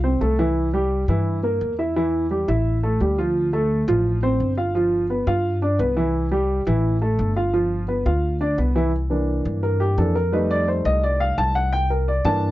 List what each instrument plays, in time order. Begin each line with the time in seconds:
Already playing: upright bass C2
0.04 upright piano C4 C5
0.21 upright bass C2, upright piano A3 A4
0.39 upright piano E3 E4
0.73 upright piano G3 G4
1.08 upright bass G2, upright piano E3 E4
1.43 upright piano A#3 A#4
1.61 upright bass E2
1.79 upright piano E4 E5
1.96 upright piano E3 E4
2.31 upright piano G3 G4
2.48 upright bass A1, upright piano E4 E5
2.83 upright piano A3 A4
3.00 upright bass D2, upright piano G3 G4
3.18 upright piano F3 F4
3.53 upright piano A3 A4
3.88 upright bass A1, upright piano F3 F4
4.23 upright piano C4 C5
4.40 upright bass G1
4.57 upright piano F4 F5
4.75 upright piano F3 F4
5.10 upright piano B3 B4
5.27 upright bass G2, upright piano F4 F5
5.62 upright piano D4 D5
5.79 upright bass C2, upright piano B3 B4
5.96 upright piano E3 E4
6.31 upright piano G3 G4
6.67 upright bass A1, upright piano E3 E4
7.01 upright piano A3 A4
7.19 upright bass G1
7.36 upright piano F4 F5
7.53 upright piano F3 F4
7.88 upright piano B3 B4
8.06 upright bass D2, upright piano F4 F5
8.41 upright piano D4 D5
8.58 upright bass C2, upright piano B3 B4
8.75 upright piano E3 E4
9.10 upright piano E3 A#3 D4
9.45 upright bass G2
9.63 upright piano A#4
9.80 upright piano G4
9.97 upright bass F2, upright piano E3 A#3 D4 A4
10.15 upright piano A#4
10.32 upright piano G3 A3 D#4 B4
10.51 upright piano D5
10.68 upright piano C5
10.85 upright bass C2, upright piano D#5
11.03 upright piano D5
11.20 upright piano F5
11.38 upright bass C2, upright piano A5
11.55 upright piano F#5
11.73 upright piano G5
11.90 upright piano A#4
12.08 upright piano D5
12.25 upright bass G2, upright piano E3 A#3 D4 A5